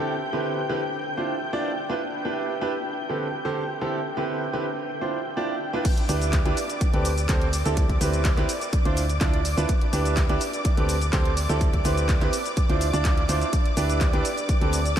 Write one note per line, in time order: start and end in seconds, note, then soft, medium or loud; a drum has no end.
0.00 0.14 D3 medium
0.00 0.14 C4 medium
0.00 0.14 E4 medium
0.00 0.14 G4 medium
0.00 0.14 A4 loud
0.00 5.86 G5 medium
0.00 5.86 G6 medium
0.33 0.59 D3 medium
0.33 0.59 C4 medium
0.33 0.59 E4 medium
0.33 0.59 G4 medium
0.33 0.59 B4 medium
0.69 0.80 D3 medium
0.69 0.80 C4 medium
0.69 0.80 E4 medium
0.69 0.80 G4 medium
0.69 0.80 B4 loud
1.17 1.34 D4 medium
1.17 1.34 E4 medium
1.17 1.34 F4 medium
1.17 1.34 C5 medium
1.53 1.70 D4 medium
1.53 1.70 E4 medium
1.53 1.70 F4 medium
1.53 1.70 D5 loud
1.89 2.00 D4 medium
1.89 2.00 E4 medium
1.89 2.00 F4 medium
1.89 2.00 B4 loud
2.25 2.51 D4 medium
2.25 2.51 E4 medium
2.25 2.51 G4 medium
2.25 2.51 B4 medium
2.61 2.72 D4 medium
2.61 2.72 E4 medium
2.61 2.72 G4 medium
2.61 2.72 B4 loud
3.09 3.26 D3 medium
3.09 3.26 C4 medium
3.09 3.26 G4 medium
3.09 3.26 A4 medium
3.09 3.26 B4 medium
3.45 3.62 D3 medium
3.45 3.62 C4 medium
3.45 3.62 G4 medium
3.45 3.62 A4 medium
3.45 3.62 C5 loud
3.81 3.98 D3 medium
3.81 3.98 C4 medium
3.81 3.98 E4 medium
3.81 3.98 G4 medium
3.81 3.98 A4 loud
4.17 4.43 D3 medium
4.17 4.43 C4 medium
4.17 4.43 E4 medium
4.17 4.43 G4 medium
4.17 4.43 B4 medium
4.53 4.64 D3 medium
4.53 4.64 C4 medium
4.53 4.64 E4 medium
4.53 4.64 G4 medium
4.53 4.64 B4 loud
5.01 5.18 D4 medium
5.01 5.18 E4 medium
5.01 5.18 F4 medium
5.01 5.18 C5 medium
5.37 5.54 D4 medium
5.37 5.54 E4 medium
5.37 5.54 F4 medium
5.37 5.54 D5 loud
5.73 5.84 D4 medium
5.73 5.84 E4 medium
5.73 5.83 F4 medium
5.73 5.83 B4 loud
5.85 15.00 D5 medium
5.85 15.00 D6 medium
5.85 kick loud
5.85 closed hi-hat loud
5.85 crash loud
5.85 shaker soft
5.97 closed hi-hat soft
6.09 6.43 D2 loud
6.09 6.35 D4 medium
6.09 6.35 E4 medium
6.09 6.35 G4 medium
6.09 6.35 B4 loud
6.09 open hi-hat loud
6.09 shaker medium
6.21 closed hi-hat soft
6.21 shaker soft
6.33 kick loud
6.33 clap loud
6.33 closed hi-hat loud
6.33 shaker soft
6.45 6.53 D2 medium
6.45 6.56 D4 medium
6.45 6.56 E4 medium
6.45 6.56 G4 medium
6.45 6.56 B4 loud
6.45 closed hi-hat soft
6.57 open hi-hat loud
6.57 shaker medium
6.70 closed hi-hat soft
6.70 shaker soft
6.81 kick loud
6.81 closed hi-hat medium
6.81 shaker soft
6.93 7.27 D2 loud
6.93 7.10 C4 medium
6.93 7.10 G4 medium
6.93 7.10 A4 medium
6.93 7.10 B4 medium
6.93 closed hi-hat soft
7.05 open hi-hat loud
7.05 shaker medium
7.18 closed hi-hat soft
7.18 shaker soft
7.29 7.63 D2 loud
7.29 7.46 C4 medium
7.29 7.46 G4 medium
7.29 7.46 A4 medium
7.29 7.46 C5 loud
7.29 kick loud
7.29 clap loud
7.29 closed hi-hat loud
7.29 shaker soft
7.42 closed hi-hat soft
7.53 open hi-hat loud
7.53 shaker medium
7.65 7.99 D2 loud
7.65 7.82 C4 loud
7.65 7.82 E4 medium
7.65 7.82 G4 medium
7.65 7.82 A4 loud
7.65 closed hi-hat soft
7.65 shaker soft
7.77 kick loud
7.77 closed hi-hat medium
7.77 shaker soft
7.89 kick medium
7.89 closed hi-hat soft
8.01 8.35 D2 loud
8.01 8.27 C4 medium
8.01 8.27 E4 medium
8.01 8.27 G4 medium
8.01 8.27 B4 loud
8.01 open hi-hat loud
8.01 shaker medium
8.13 closed hi-hat soft
8.13 shaker soft
8.25 kick loud
8.25 clap loud
8.25 closed hi-hat medium
8.25 shaker soft
8.37 8.45 D2 medium
8.37 8.48 C4 loud
8.37 8.48 E4 medium
8.37 8.48 G4 medium
8.37 8.48 B4 loud
8.37 clap soft
8.37 closed hi-hat soft
8.49 open hi-hat loud
8.49 shaker medium
8.61 closed hi-hat soft
8.61 shaker soft
8.73 kick loud
8.73 closed hi-hat loud
8.73 shaker soft
8.85 9.19 D2 loud
8.85 9.02 D4 medium
8.85 9.02 E4 medium
8.85 9.02 F4 medium
8.85 9.02 C5 medium
8.85 closed hi-hat soft
8.97 open hi-hat loud
8.97 shaker medium
9.10 closed hi-hat soft
9.10 shaker soft
9.21 9.55 D2 loud
9.21 9.38 D4 medium
9.21 9.38 E4 medium
9.21 9.38 F4 medium
9.21 9.38 D5 loud
9.21 kick loud
9.21 clap loud
9.21 closed hi-hat medium
9.21 shaker soft
9.34 closed hi-hat soft
9.45 open hi-hat loud
9.45 shaker medium
9.57 9.65 D2 loud
9.57 9.68 D4 medium
9.57 9.68 E4 medium
9.57 9.68 F4 medium
9.57 9.68 B4 loud
9.57 closed hi-hat soft
9.57 shaker soft
9.69 kick loud
9.69 closed hi-hat medium
9.69 shaker soft
9.81 closed hi-hat soft
9.93 10.27 D2 loud
9.93 10.19 D4 medium
9.93 10.19 E4 medium
9.93 10.19 G4 medium
9.93 10.19 B4 loud
9.93 open hi-hat loud
9.93 shaker medium
10.05 closed hi-hat soft
10.05 shaker soft
10.17 kick loud
10.17 clap loud
10.17 closed hi-hat medium
10.17 shaker soft
10.29 10.37 D2 loud
10.29 10.40 D4 loud
10.29 10.40 E4 medium
10.29 10.40 G4 medium
10.29 10.40 B4 loud
10.29 closed hi-hat soft
10.41 open hi-hat loud
10.41 shaker medium
10.53 closed hi-hat soft
10.53 shaker soft
10.65 kick loud
10.65 closed hi-hat medium
10.65 shaker soft
10.77 11.11 D2 loud
10.77 10.94 C4 medium
10.77 10.94 G4 medium
10.77 10.94 A4 medium
10.77 10.94 B4 medium
10.77 closed hi-hat soft
10.89 open hi-hat loud
10.89 shaker medium
11.02 closed hi-hat soft
11.02 shaker soft
11.13 11.47 D2 loud
11.13 11.30 C4 medium
11.13 11.30 G4 medium
11.13 11.30 A4 medium
11.13 11.30 C5 loud
11.13 kick loud
11.13 clap loud
11.13 closed hi-hat medium
11.13 shaker soft
11.25 closed hi-hat soft
11.37 open hi-hat loud
11.37 shaker medium
11.49 11.83 D2 loud
11.49 11.66 C4 medium
11.49 11.66 E4 medium
11.49 11.66 G4 medium
11.49 11.66 A4 loud
11.49 closed hi-hat soft
11.49 shaker soft
11.61 kick loud
11.61 closed hi-hat medium
11.61 shaker soft
11.73 kick medium
11.73 closed hi-hat soft
11.85 12.19 D2 loud
11.85 12.11 C4 medium
11.85 12.11 E4 medium
11.85 12.11 G4 medium
11.85 12.11 B4 loud
11.85 open hi-hat loud
11.85 shaker medium
11.97 closed hi-hat soft
11.97 shaker soft
12.09 kick loud
12.09 clap loud
12.09 closed hi-hat medium
12.09 shaker soft
12.21 12.29 D2 loud
12.21 12.31 C4 medium
12.21 12.31 E4 medium
12.21 12.31 G4 medium
12.21 12.31 B4 loud
12.21 clap soft
12.21 closed hi-hat soft
12.33 open hi-hat loud
12.33 shaker medium
12.45 closed hi-hat soft
12.45 shaker soft
12.57 kick loud
12.57 closed hi-hat medium
12.57 shaker soft
12.69 12.91 D2 loud
12.69 12.86 D4 medium
12.69 12.86 E4 medium
12.69 12.86 F4 medium
12.69 12.86 C5 medium
12.69 closed hi-hat soft
12.81 open hi-hat loud
12.81 shaker medium
12.93 13.27 D2 loud
12.93 13.20 D4 loud
12.93 13.20 E4 medium
12.93 13.20 F4 medium
12.93 13.20 D5 loud
12.93 closed hi-hat soft
12.93 shaker soft
13.05 kick loud
13.05 clap loud
13.05 closed hi-hat medium
13.05 shaker soft
13.17 closed hi-hat soft
13.29 13.43 D2 medium
13.29 13.46 D4 medium
13.29 13.46 E4 medium
13.29 13.46 F4 medium
13.29 13.46 C5 loud
13.29 open hi-hat loud
13.29 shaker medium
13.41 closed hi-hat soft
13.41 shaker soft
13.53 kick loud
13.53 closed hi-hat medium
13.53 shaker soft
13.66 closed hi-hat soft
13.77 14.11 D2 loud
13.77 14.03 D4 medium
13.77 14.03 E4 medium
13.77 14.03 G4 medium
13.77 14.03 B4 loud
13.77 open hi-hat loud
13.77 shaker medium
13.90 closed hi-hat soft
13.90 shaker soft
14.01 kick loud
14.01 clap loud
14.01 closed hi-hat medium
14.01 shaker soft
14.13 14.21 D2 loud
14.13 14.24 D4 loud
14.13 14.24 E4 medium
14.13 14.24 G4 medium
14.13 14.24 B4 loud
14.13 closed hi-hat soft
14.25 open hi-hat loud
14.25 shaker medium
14.37 closed hi-hat soft
14.37 shaker soft
14.49 kick loud
14.49 closed hi-hat medium
14.49 shaker soft
14.61 14.95 D2 loud
14.61 14.78 C4 medium
14.61 14.78 G4 medium
14.61 14.78 A4 medium
14.61 14.78 B4 medium
14.61 closed hi-hat soft
14.73 open hi-hat loud
14.73 shaker medium
14.86 closed hi-hat soft
14.86 shaker soft